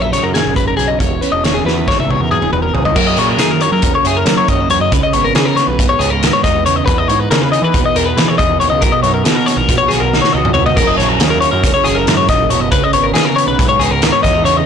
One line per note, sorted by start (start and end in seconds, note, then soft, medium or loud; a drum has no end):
0.00 0.19 A#1 medium
0.00 0.34 F#2 medium
0.00 1.01 F#3 medium
0.00 0.98 A#3 medium
0.00 1.01 D#4 medium
0.00 1.01 G#4 soft
0.00 0.13 E5 medium
0.13 0.97 C#3 medium
0.13 0.24 C#5 medium
0.13 snare soft
0.13 closed hi-hat medium
0.23 0.42 F#2 medium
0.23 0.34 A#4 medium
0.34 0.55 A#2 medium
0.34 0.56 G#4 medium
0.34 snare loud
0.34 closed hi-hat medium
0.45 0.73 F#1 medium
0.55 0.76 G#2 medium
0.55 0.67 B4 medium
0.55 kick medium
0.55 closed hi-hat medium
0.68 0.76 A#4 medium
0.76 0.97 B1 medium
0.76 0.98 F#2 medium
0.76 0.88 G#4 medium
0.76 closed hi-hat medium
0.88 0.99 D#5 medium
0.98 1.18 E1 medium
0.98 2.73 E2 medium
0.98 1.21 C#5 medium
0.98 kick medium
0.98 closed hi-hat medium
1.21 2.94 C#4 soft
1.21 1.32 B4 medium
1.21 closed hi-hat medium
1.32 1.60 E1 medium
1.32 1.44 D#5 medium
1.44 1.55 C#5 medium
1.44 snare loud
1.44 closed hi-hat medium
1.54 1.65 G#4 medium
1.65 1.89 E2 medium
1.65 1.77 F#4 medium
1.65 1.88 B4 medium
1.65 snare soft
1.77 2.96 G#4 soft
1.87 2.15 G#1 medium
1.87 2.94 D#4 medium
1.87 1.98 C#5 medium
1.87 kick loud
1.87 snare medium
2.00 2.11 E5 medium
2.00 high tom medium
2.08 2.96 B2 medium
2.08 2.21 C#5 medium
2.08 high tom medium
2.20 2.38 E2 medium
2.20 2.31 A#4 medium
2.31 2.52 G#4 medium
2.31 mid tom medium
2.41 2.69 E1 medium
2.41 mid tom medium
2.53 2.62 B4 medium
2.53 mid tom medium
2.62 2.74 A#4 medium
2.74 2.93 C#2 medium
2.74 2.95 E2 medium
2.74 2.85 G#4 medium
2.74 floor tom medium
2.85 2.96 D#5 medium
2.85 floor tom medium
2.95 4.68 F#2 medium
2.95 3.14 F#2 medium
2.95 4.89 F#3 medium
2.95 3.18 A#3 medium
2.95 3.66 E4 soft
2.95 6.48 G#4 medium
2.95 3.07 A#4 medium
2.95 kick loud
2.95 crash loud
3.07 3.19 D#5 medium
3.17 3.36 A#2 medium
3.17 3.62 A#3 medium
3.17 3.29 C#5 medium
3.17 closed hi-hat medium
3.29 3.40 A#4 medium
3.39 3.67 D#3 medium
3.39 3.50 G#4 medium
3.39 snare loud
3.39 closed hi-hat loud
3.51 3.61 A#4 medium
3.61 4.27 A#3 medium
3.61 3.72 C#5 medium
3.61 closed hi-hat medium
3.72 3.81 F#3 medium
3.72 3.94 A#4 medium
3.82 3.92 E2 medium
3.82 4.89 C#3 medium
3.82 kick loud
3.82 closed hi-hat loud
3.95 4.05 C#5 medium
4.04 4.23 F#2 medium
4.04 4.49 E4 medium
4.04 4.17 G#4 medium
4.04 closed hi-hat medium
4.17 4.37 A#4 medium
4.25 4.44 F#3 medium
4.25 4.90 A#3 medium
4.25 snare loud
4.25 closed hi-hat loud
4.38 4.49 C#5 medium
4.48 4.67 F#2 medium
4.48 4.60 C#4 medium
4.48 4.70 D#5 medium
4.48 kick medium
4.48 closed hi-hat medium
4.60 4.92 E4 soft
4.70 4.79 E2 loud
4.70 4.89 F#2 medium
4.70 4.81 C#5 medium
4.70 closed hi-hat medium
4.80 4.90 F#2 medium
4.80 4.93 D#5 medium
4.91 5.01 C#2 medium
4.91 5.78 C#3 medium
4.91 5.03 B4 medium
4.91 kick loud
4.91 closed hi-hat medium
5.03 5.13 D#5 medium
5.13 5.32 G#1 medium
5.13 5.59 B3 medium
5.13 5.24 C#5 medium
5.13 closed hi-hat medium
5.24 5.35 A#4 medium
5.35 5.63 C#3 medium
5.35 6.01 D#4 medium
5.35 5.45 G#4 medium
5.35 snare loud
5.35 closed hi-hat medium
5.45 5.57 A#4 medium
5.57 6.25 B3 medium
5.57 5.67 C#5 medium
5.57 snare soft
5.57 closed hi-hat medium
5.67 5.77 B1 medium
5.67 5.89 B4 medium
5.79 5.97 B1 medium
5.79 6.67 G#2 medium
5.79 kick loud
5.79 closed hi-hat medium
5.89 6.00 C#5 medium
5.99 6.09 C#2 medium
5.99 6.12 C#4 medium
5.99 6.10 G#4 medium
5.99 closed hi-hat medium
6.10 6.29 C#2 medium
6.10 6.44 D#4 medium
6.10 6.32 A#4 medium
6.23 7.11 B3 medium
6.23 snare loud
6.23 closed hi-hat loud
6.33 6.43 C#5 medium
6.44 6.81 E2 medium
6.44 6.92 D#4 medium
6.44 6.65 D#5 medium
6.44 kick medium
6.44 snare soft
6.44 closed hi-hat medium
6.66 6.85 C#3 medium
6.66 6.76 C#5 medium
6.66 closed hi-hat medium
6.76 6.85 D#5 medium
6.86 7.06 E2 medium
6.86 8.62 E2 medium
6.86 6.98 B4 medium
6.86 kick loud
6.86 closed hi-hat medium
6.98 7.08 D#5 medium
7.08 7.27 G#2 medium
7.08 7.54 D#4 medium
7.08 7.20 C#5 medium
7.08 closed hi-hat medium
7.20 7.31 B4 medium
7.31 7.58 C#3 loud
7.31 7.97 G#4 medium
7.31 7.42 A#4 medium
7.31 snare loud
7.31 closed hi-hat loud
7.42 7.51 B4 medium
7.52 8.19 D#4 medium
7.52 7.63 D#5 medium
7.52 closed hi-hat medium
7.62 7.72 E3 medium
7.62 7.85 B4 medium
7.74 7.83 D#2 medium
7.74 8.83 B2 medium
7.74 kick loud
7.74 closed hi-hat medium
7.86 7.96 D#5 medium
7.95 8.14 E2 medium
7.95 8.40 G#4 medium
7.95 8.07 A#4 medium
7.95 closed hi-hat medium
8.06 8.28 B4 medium
8.17 8.36 E3 medium
8.17 8.81 D#4 medium
8.17 snare loud
8.17 closed hi-hat medium
8.28 8.38 C#5 medium
8.38 8.58 E2 medium
8.38 8.60 D#5 medium
8.38 kick medium
8.38 closed hi-hat medium
8.43 8.82 G#4 medium
8.60 8.70 D#2 medium
8.60 8.84 E2 medium
8.60 8.70 C#5 medium
8.60 closed hi-hat medium
8.70 8.81 C#2 medium
8.70 8.82 D#5 medium
8.81 8.92 B1 loud
8.81 9.70 B2 medium
8.81 8.93 A#4 medium
8.81 kick loud
8.81 closed hi-hat medium
8.92 9.02 D#5 medium
9.03 9.22 F#2 medium
9.03 9.14 C#5 medium
9.03 closed hi-hat medium
9.08 9.49 D#4 medium
9.14 9.24 A#4 medium
9.24 9.53 B2 medium
9.24 9.35 G#4 medium
9.24 snare loud
9.24 closed hi-hat medium
9.30 9.93 F#4 medium
9.35 9.46 A#4 medium
9.46 9.57 C#5 medium
9.46 snare soft
9.46 closed hi-hat medium
9.50 10.13 D#4 soft
9.57 9.67 A#1 medium
9.57 9.78 A#4 medium
9.69 9.87 A#1 medium
9.69 10.57 B2 medium
9.69 kick loud
9.69 closed hi-hat loud
9.78 9.90 C#5 medium
9.89 9.99 B1 medium
9.89 10.01 G#4 medium
9.89 snare soft
9.89 closed hi-hat medium
9.95 10.36 F#4 medium
10.00 10.20 B1 medium
10.00 10.21 A#4 medium
10.13 10.76 D#4 medium
10.13 snare medium
10.22 10.33 C#5 medium
10.22 snare medium
10.33 10.71 C#2 medium
10.33 10.54 D#5 medium
10.37 10.77 F#4 medium
10.45 mid tom medium
10.54 10.66 C#5 medium
10.54 mid tom medium
10.59 10.79 B2 medium
10.66 10.77 D#5 medium
10.66 floor tom medium
10.76 10.96 F#1 medium
10.76 12.08 F#2 medium
10.76 10.88 A#4 medium
10.76 kick loud
10.76 closed hi-hat loud
10.76 crash medium
10.81 12.72 F#3 medium
10.81 11.02 C#4 medium
10.81 11.23 E4 medium
10.81 12.73 A#4 medium
10.87 10.97 D#5 medium
10.98 11.18 A#1 medium
10.98 11.09 C#5 medium
10.98 snare soft
10.98 closed hi-hat medium
11.02 11.23 C#4 medium
11.09 11.19 A#4 medium
11.19 11.48 D#2 medium
11.19 11.30 G#4 medium
11.19 snare loud
11.19 closed hi-hat loud
11.23 11.34 C#4 medium
11.30 11.87 E4 medium
11.30 11.40 A#4 medium
11.41 11.87 C#4 medium
11.41 11.51 C#5 medium
11.41 closed hi-hat medium
11.52 11.63 F#2 medium
11.52 11.73 A#4 medium
11.63 11.73 E1 medium
11.63 12.52 C#3 medium
11.63 kick loud
11.63 snare soft
11.63 closed hi-hat loud
11.74 11.86 C#5 medium
11.84 12.04 F#1 medium
11.84 11.99 C#4 medium
11.84 11.96 G#4 medium
11.84 snare soft
11.84 closed hi-hat medium
11.95 12.74 E4 medium
11.95 12.17 A#4 medium
12.07 12.26 F#2 medium
12.07 12.30 G#2 medium
12.07 snare loud
12.07 closed hi-hat medium
12.17 12.29 C#5 medium
12.28 12.47 F#1 loud
12.28 12.52 A#2 medium
12.28 12.50 D#5 medium
12.28 kick medium
12.28 snare soft
12.28 closed hi-hat medium
12.49 12.59 E1 medium
12.49 12.72 B2 medium
12.49 12.60 C#5 medium
12.49 closed hi-hat medium
12.60 12.71 F#1 medium
12.60 12.71 D#5 medium
12.72 12.82 C#2 medium
12.72 13.60 C#3 medium
12.72 12.84 B4 medium
12.72 kick loud
12.72 closed hi-hat medium
12.84 12.93 D#5 medium
12.93 13.12 G#1 medium
12.93 13.38 B3 medium
12.93 13.05 C#5 medium
12.93 closed hi-hat medium
13.03 13.13 A#4 medium
13.14 13.43 C#3 medium
13.14 13.83 D#4 medium
13.14 13.25 G#4 medium
13.14 snare loud
13.14 closed hi-hat medium
13.25 13.37 A#4 medium
13.36 14.03 B3 medium
13.36 13.47 C#5 medium
13.36 closed hi-hat medium
13.47 13.57 B1 medium
13.47 13.68 B4 medium
13.59 13.78 B1 medium
13.59 14.46 G#2 medium
13.59 kick loud
13.59 closed hi-hat medium
13.69 13.81 C#5 medium
13.79 13.89 C#2 medium
13.79 14.25 D#4 medium
13.79 13.91 G#4 medium
13.79 closed hi-hat medium
13.91 14.10 C#2 medium
13.91 14.13 A#4 medium
14.02 14.66 B3 medium
14.02 snare loud
14.02 closed hi-hat medium
14.12 14.23 C#5 medium
14.23 14.61 E2 medium
14.23 14.34 C#4 medium
14.23 14.45 D#5 medium
14.23 kick medium
14.23 snare soft
14.23 closed hi-hat medium
14.34 14.66 D#4 soft
14.44 14.64 C#3 medium
14.44 14.57 C#5 medium
14.44 closed hi-hat medium
14.57 14.66 D#5 medium